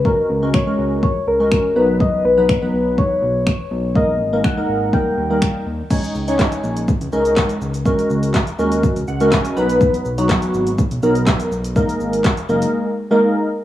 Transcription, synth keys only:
\new Staff \with { instrumentName = "Synth keys" } { \time 4/4 \key b \major \tempo 4 = 123 << { r1 | r1 | r1 | r1 |
r2 r8 fis''8 gis''8 b''8 | r1 | r1 | } \\ { <gis cis' fis' ais'>8 r16 <gis cis' fis' ais'>16 r16 <gis cis' fis' ais'>4 r8 <gis cis' fis' ais'>8. <fis b dis' b'>8~ | <fis b dis' b'>8 r16 <fis b dis' b'>16 r16 <fis b dis' b'>4~ <fis b dis' b'>16 r4. | <gis ais dis' ais'>8 r16 <gis ais dis' ais'>16 r16 <gis ais dis' ais'>8. <g ais dis' ais'>8 r16 <g ais dis' ais'>8. r8 | <gis cis' dis' cis''>8 r16 <gis cis' dis' cis''>4 r8. <gis cis' dis' ais'>4 r8 |
<gis cis' fis' ais'>4 r8 <gis cis' fis' ais'>8. r8 <gis cis' fis' ais'>8. <fis b dis' b'>8~ | <fis b dis' b'>8 r16 <fis b dis' fis'>4 r8. <fis b dis' ais'>4 r8 | <gis ais dis' ais'>4 r8 <gis ais dis' ais'>8. r8 <gis ais dis' ais'>8. r8 | } >> }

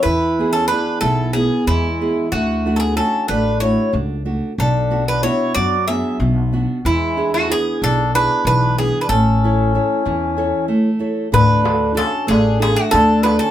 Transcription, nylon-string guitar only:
\new Staff \with { instrumentName = "Nylon-string guitar" } { \time 7/8 \key d \lydian \tempo 4 = 93 e8 <b e' gis'>8 <b e' gis'>8 b,8 <b e' gis'>8 e8 <b e' gis'>8 | d8 <a d' fis'>8 <a d' fis'>8 a8 <a d' fis'>8 d'8 <a d' fis'>8 | b,8 <b d' fis'>8 <b d' fis'>8 fis8 <b d' fis'>8 b,8 <b d' fis'>8 | e8 <d' e' gis'>8 <d' e' gis'>8 b,8 <d' e' gis'>8 e8 <d' e' gis'>8 |
a8 <e' a' cis''>8 <e' a' cis''>8 e8 <e' a' cis''>8 a8 <e' a' cis''>8 | d8 <d' fis' a'>8 <d' fis' a'>8 a8 <d' fis' a'>8 d8 <d' fis' a'>8 | }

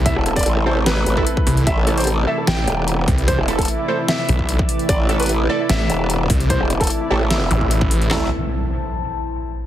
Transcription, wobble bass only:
\new Staff \with { instrumentName = "Wobble bass" } { \clef bass \time 4/4 \key a \minor \tempo 4 = 149 r16 e,,8. a,,4. a,,8 r4 | a,,4. r4 e,,4 r8 | r16 e,,8. r2. | a,,4. r4 e,,4 r8 |
r16 e,,8. r8 a,,4 r4. | a,,8 r2. r8 | }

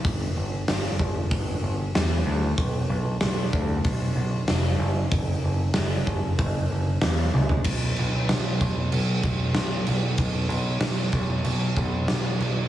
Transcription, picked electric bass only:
\new Staff \with { instrumentName = "Picked electric bass" } { \clef bass \time 4/4 \key fis \phrygian \tempo 4 = 95 g,,8 g,,8 g,,8 g,,8 g,,8 g,,8 e,8 d,8 | b,,8 b,,8 b,,8 d,8 b,,8 b,,8 eis,,8 fis,,8 | fis,,8 fis,,8 fis,,8 fis,,8 fis,,8 fis,,8 e,8 cis,8 | b,,8 b,,8 b,,8 b,,8 b,,8 b,,8 b,,8 b,,8 |
b,,8 b,,8 b,,8 b,,8 b,,8 b,,8 b,,8 b,,8 | }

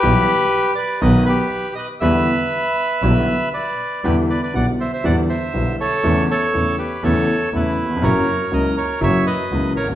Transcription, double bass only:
\new Staff \with { instrumentName = "Double bass" } { \clef bass \time 4/4 \key e \minor \tempo 4 = 121 b,,8 r4. b,,8 r4. | e,8 r4. b,,8 r4. | e,8 r8 b,,8 r8 e,8 r8 b,,8 r8 | e,8 r8 e,8 r8 e,8 r8 e,8 r8 |
fis,,8 r8 cis,8 r8 fis,,8 r8 cis,8 a,,8 | }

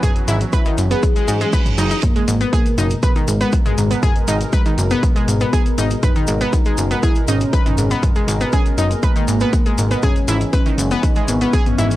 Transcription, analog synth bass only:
\new Staff \with { instrumentName = "Analog synth bass" } { \clef bass \time 4/4 \key gis \minor \tempo 4 = 120 r8 gis,,8 r8 fis,,8 r8 gis,8 r8 fis,,8 | r8 gis,,8 r8 fis,,8 r8 gis,,8 r8 gis,,8 | r8 gis,,8 r8 fis,,8 r8 gis,,8 r8 gis,,8 | r8 gis,,8 r8 fis,,8 r8 gis,,8 r8 gis,,8 |
r8 gis,,8 r8 fis,,8 r8 gis,,8 r8 gis,,8 | r8 gis,,8 r8 fis,,8 r8 gis,,8 r8 gis,,8 | }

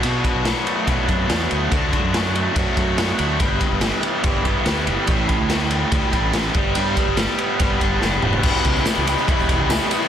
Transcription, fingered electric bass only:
\new Staff \with { instrumentName = "Fingered electric bass" } { \clef bass \time 4/4 \key g \lydian \tempo 4 = 143 b,8 r16 b,,8 r8. b,,8 fis,8 e,8 d,8 | d,8. fis,4~ fis,16 fis,16 r16 fis,4 d,8 | g,,8 r16 g,,8 r8. g,,8 g,,16 r16 d,8 g,,16 r16 | a,,8. d,4~ d,16 d,16 r16 a,,4 g,,8 |
g,8 r16 g,,8 r8. g,,8 g,,8 fis,,8 e,,8 | e,,16 r16 cis,8 r16 cis,8 r8 e,,8 cis,8 r8. | }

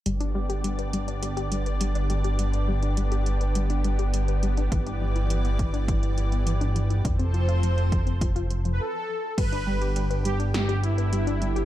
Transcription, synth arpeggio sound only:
\new Staff \with { instrumentName = "Synth arpeggio sound" } { \clef bass \time 4/4 \key g \mixolydian \tempo 4 = 103 g16 d'16 g16 g'16 g16 b'16 g16 d'16 g16 g'16 g16 b'16 g16 d'16 g16 g'16 | g16 b'16 g16 d'16 g16 g'16 g16 b'16 g16 d'16 g16 g'16 g16 b'16 g16 d'16 | e16 d'16 e16 e'16 e16 b16 e16 d'16 e16 e'16 e16 b16 e16 d'16 e16 e'16 | f16 c'16 f16 f'16 f16 a'16 f16 c'16 f16 f'16 f16 f16 r4 |
g16 d'16 g16 g'16 g16 b'16 g16 d'16 g16 g'16 g16 b'16 g16 d'16 g16 g'16 | }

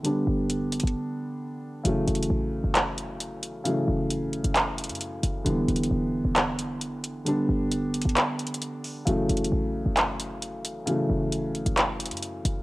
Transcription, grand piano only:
\new Staff \with { instrumentName = "Grand piano" } { \clef bass \time 4/4 \key fis \phrygian \tempo 4 = 133 <d g b d'>1 | <cis e fis a>1 | <cis e fis a>1 | <d e g b>1 |
<d g b d'>1 | <cis e fis a>1 | <cis e fis a>1 | }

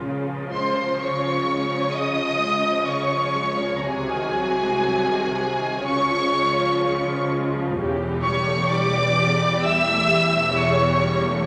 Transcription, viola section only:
\new Staff \with { instrumentName = "Viola section" } { \clef bass \time 4/4 \key des \major \tempo 4 = 63 << { f'1 | ges'2 f'2 | \key a \phrygian g'1 | } \\ { des16 f16 aes16 f16 des16 f16 aes16 f16 des16 f16 aes16 f16 des16 f16 aes16 f16 | c16 ees16 ges16 aes16 ges16 ees16 c16 ees16 des16 f16 aes16 f16 des16 f16 aes16 f16 | cis16 e16 g16 a16 g16 e16 cis16 e16 g16 a16 g16 e16 cis16 e16 g16 a16 | } >> }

